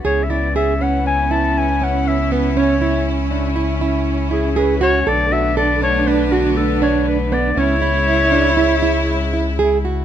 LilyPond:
<<
  \new Staff \with { instrumentName = "Clarinet" } { \time 5/4 \key cis \phrygian \tempo 4 = 120 cis''16. e''32 d''8 e''8 fis''8 gis''8 a''8 gis''8 fis''8 e''8 b'8 | cis''4 r2 r8 gis'8 b'8 cis''8 | d''8 e''8 d''8 cis''8 b'8 fis'8 a'8 cis''8 b'8 d''8 | cis''1 r4 | }
  \new Staff \with { instrumentName = "Nylon-string guitar" } { \time 5/4 \key cis \phrygian gis'8 e'8 gis'8 cis'8 cis'8 e'4 cis'4 b8 | cis'8 e'4 d'8 e'8 e'4 e'8 gis'8 fis'8 | a'8 fis'8 a'8 d'8 d'8 fis'4 d'4 b8 | cis'8 e'4 d'8 e'8 e'4 e'8 gis'8 fis'8 | }
  \new Staff \with { instrumentName = "Cello" } { \time 5/4 \key cis \phrygian cis'1~ cis'4~ | cis'1~ cis'4 | d'1~ d'4 | e'1~ e'8 r8 | }
  \new Staff \with { instrumentName = "String section" } { \time 5/4 \key cis \phrygian << { <cis e'>1~ <cis e'>4~ | <cis e'>1~ <cis e'>4 | <d b>1~ <d b>4 | <cis e'>1~ <cis e'>4 | } \\ { b1~ b4 | cis'1~ cis'4 | a1~ a4 | gis1~ gis4 | } >> }
  \new Staff \with { instrumentName = "Sub bass" } { \clef bass \time 5/4 \key cis \phrygian cis,1~ cis,4~ | cis,1~ cis,4 | b,,1~ b,,4 | cis,1~ cis,4 | }
>>